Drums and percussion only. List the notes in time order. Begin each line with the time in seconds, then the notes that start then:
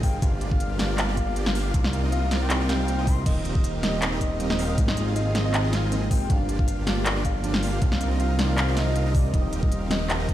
0.03 kick, open hi-hat
0.22 kick, closed hi-hat
0.41 closed hi-hat
0.51 kick
0.60 closed hi-hat
0.79 snare, closed hi-hat
0.98 clap, closed hi-hat
1.17 kick, closed hi-hat
1.36 closed hi-hat
1.46 snare
1.55 open hi-hat
1.74 kick, closed hi-hat
1.84 snare
1.93 closed hi-hat
2.12 closed hi-hat
2.31 snare, closed hi-hat
2.50 clap, closed hi-hat
2.69 snare, closed hi-hat
2.88 closed hi-hat
3.07 kick, open hi-hat
3.26 kick, closed hi-hat, crash
3.45 closed hi-hat
3.55 kick
3.64 closed hi-hat
3.83 snare, closed hi-hat
4.02 clap, closed hi-hat
4.21 kick, closed hi-hat
4.40 closed hi-hat
4.50 snare
4.59 open hi-hat
4.78 kick, closed hi-hat
4.88 snare
4.97 closed hi-hat
5.16 closed hi-hat
5.35 snare, closed hi-hat
5.54 clap, closed hi-hat
5.73 snare, closed hi-hat
5.92 closed hi-hat
6.11 kick, open hi-hat
6.30 kick, closed hi-hat
6.49 closed hi-hat
6.59 kick
6.68 closed hi-hat
6.87 snare, closed hi-hat
7.06 clap, closed hi-hat
7.25 kick, closed hi-hat
7.44 closed hi-hat
7.54 snare
7.63 open hi-hat
7.82 kick, closed hi-hat
7.92 snare
8.01 closed hi-hat
8.20 closed hi-hat
8.39 snare, closed hi-hat
8.58 clap, closed hi-hat
8.77 snare, closed hi-hat
8.96 closed hi-hat
9.15 kick, open hi-hat
9.34 kick, closed hi-hat
9.53 closed hi-hat
9.63 kick
9.72 closed hi-hat
9.91 snare, closed hi-hat
10.10 clap, closed hi-hat
10.29 kick, closed hi-hat